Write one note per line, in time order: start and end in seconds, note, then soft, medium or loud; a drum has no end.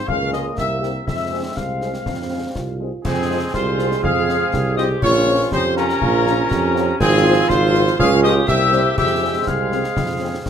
0.08 0.49 C#2 medium
0.08 0.58 G#3 medium
0.08 1.10 A#3 medium
0.08 0.58 C#4 medium
0.08 0.31 F5 medium
0.08 0.33 F5 loud
0.08 concert bass drum medium
0.32 0.41 F3 medium
0.32 0.41 G#3 medium
0.32 0.41 F4 medium
0.32 0.56 D#5 medium
0.32 0.44 D#5 medium
0.32 snare soft
0.56 0.99 C2 medium
0.56 1.06 A#3 medium
0.56 1.06 C4 medium
0.56 1.03 E5 medium
0.56 1.04 E5 loud
0.56 concert bass drum medium
0.56 snare medium
0.81 0.91 A#3 medium
0.81 0.90 C4 medium
0.81 0.90 G4 medium
0.81 snare soft
1.07 1.48 F2 medium
1.07 2.76 G#3 medium
1.07 1.52 G#3 medium
1.07 2.76 C4 medium
1.07 1.53 E5 medium
1.07 1.54 E5 medium
1.07 concert bass drum medium
1.07 snare medium
1.32 1.41 G#3 medium
1.32 1.41 C4 medium
1.32 1.41 G#4 medium
1.56 1.97 C2 medium
1.56 2.08 G#3 medium
1.56 2.76 F5 medium
1.56 2.80 F5 medium
1.56 concert bass drum medium
1.56 snare medium
1.81 1.91 G#3 soft
1.81 1.90 C4 soft
1.81 1.90 G#4 soft
1.81 snare soft
1.94 snare medium
2.05 2.47 F2 medium
2.05 2.54 C4 medium
2.05 concert bass drum medium
2.05 snare medium
2.31 2.40 G#3 soft
2.31 2.40 C4 soft
2.31 2.40 G#4 soft
2.55 2.92 C2 medium
2.55 3.01 F4 medium
2.55 concert bass drum medium
2.55 snare medium
2.81 2.90 G#3 soft
2.81 2.90 C4 soft
2.81 2.89 G#4 soft
3.04 3.46 F2 medium
3.04 4.98 G#3 medium
3.04 3.39 C4 medium
3.04 3.51 C4 medium
3.04 4.99 C4 medium
3.04 3.50 G#4 loud
3.04 3.51 G#5 medium
3.04 concert bass drum medium
3.04 snare medium
3.04 crash medium
3.30 3.39 G#3 medium
3.30 3.39 C4 medium
3.30 3.39 F4 medium
3.53 3.95 C2 medium
3.53 4.00 F4 medium
3.53 4.98 G#4 loud
3.53 4.00 C5 loud
3.53 4.00 C6 medium
3.53 concert bass drum medium
3.53 snare medium
3.79 3.88 G#3 medium
3.79 3.88 C4 medium
3.79 3.88 F4 medium
3.79 snare medium
3.92 snare medium
4.02 4.44 F2 loud
4.02 4.77 G#4 loud
4.02 4.74 F5 loud
4.02 4.73 F6 loud
4.02 concert bass drum medium
4.28 4.37 G#3 medium
4.28 4.37 C4 medium
4.28 4.37 F4 medium
4.28 snare medium
4.53 4.94 C2 medium
4.53 concert bass drum medium
4.53 snare medium
4.76 4.86 G#3 medium
4.76 4.86 C4 medium
4.76 4.86 F4 medium
4.76 5.01 G4 medium
4.76 4.89 D#5 loud
4.76 4.82 D#6 medium
4.76 snare medium
5.02 5.43 A#1 loud
5.02 6.96 F3 medium
5.02 7.00 C#4 medium
5.02 5.48 F4 medium
5.02 5.48 F4 loud
5.02 5.48 C#5 loud
5.02 5.48 C#6 loud
5.02 concert bass drum medium
5.02 snare medium
5.02 crash soft
5.27 5.36 F3 medium
5.27 5.36 C#4 medium
5.27 5.36 F4 medium
5.52 5.93 F2 loud
5.52 5.63 D#4 medium
5.52 5.98 G4 loud
5.52 5.75 C5 loud
5.52 5.58 C6 medium
5.52 concert bass drum medium
5.52 snare medium
5.77 5.86 F3 medium
5.77 6.96 C#4 loud
5.77 5.86 C#4 medium
5.77 5.86 F4 medium
5.77 6.96 A#4 loud
5.77 6.96 A#5 loud
5.77 snare medium
5.89 snare medium
6.01 6.42 A#1 loud
6.01 6.53 F4 loud
6.01 concert bass drum medium
6.25 6.35 F3 medium
6.25 6.34 C#4 medium
6.25 6.35 F4 medium
6.25 snare medium
6.50 6.91 F2 loud
6.50 7.00 G4 loud
6.50 concert bass drum medium
6.50 snare medium
6.75 6.84 F3 medium
6.75 6.84 C#4 medium
6.75 6.84 F4 medium
6.75 snare medium
6.99 7.41 G#1 loud
6.99 7.95 F3 loud
6.99 7.46 C4 loud
6.99 7.99 C4 medium
6.99 7.95 F4 loud
6.99 7.46 G#4 loud
6.99 7.50 G#5 loud
6.99 concert bass drum loud
6.99 snare medium
6.99 crash soft
7.25 7.34 F3 loud
7.25 7.34 C4 loud
7.25 7.34 F4 medium
7.49 7.90 G#1 loud
7.49 7.98 F4 loud
7.49 7.98 C5 loud
7.49 7.98 C6 loud
7.49 concert bass drum medium
7.49 snare medium
7.73 7.82 F3 medium
7.73 7.82 C4 medium
7.73 7.82 F4 medium
7.73 snare medium
7.87 snare medium
7.98 8.40 C#2 loud
7.98 8.48 G#3 loud
7.98 8.44 C#4 loud
7.98 8.50 F4 loud
7.98 8.10 G#4 loud
7.98 8.22 F5 loud
7.98 8.05 F6 loud
7.98 concert bass drum loud
8.22 8.32 F3 medium
8.22 8.31 C#4 medium
8.22 8.32 F4 medium
8.22 8.46 G4 loud
8.22 8.34 D#5 loud
8.22 8.50 D#6 loud
8.22 snare medium
8.47 8.89 C2 loud
8.47 8.97 A#3 medium
8.47 8.96 C4 medium
8.47 8.94 G4 loud
8.47 8.95 G4 loud
8.47 8.93 E5 loud
8.47 8.98 E6 loud
8.47 concert bass drum medium
8.47 snare medium
8.71 8.81 G3 medium
8.71 8.81 A#3 medium
8.71 8.80 C4 medium
8.71 snare medium
8.96 9.39 F2 loud
8.96 10.50 G#3 medium
8.96 10.50 C4 medium
8.96 9.43 G4 loud
8.96 10.50 G#4 loud
8.96 9.43 E5 loud
8.96 9.49 E6 loud
8.96 concert bass drum medium
8.96 snare medium
8.96 crash soft
9.21 9.30 F3 medium
9.21 9.31 G#3 medium
9.21 9.31 C4 medium
9.47 9.84 C2 medium
9.47 10.50 G#4 medium
9.47 10.50 F5 medium
9.47 10.50 F6 medium
9.47 concert bass drum medium
9.47 snare medium
9.71 9.80 F3 medium
9.71 9.80 G#3 medium
9.71 9.80 C4 medium
9.71 snare medium
9.84 snare medium
9.96 10.37 F2 medium
9.96 concert bass drum medium
9.96 snare medium
10.20 10.29 F3 medium
10.20 10.29 G#3 medium
10.20 10.29 C4 medium
10.46 10.50 C2 medium
10.46 concert bass drum medium
10.46 snare medium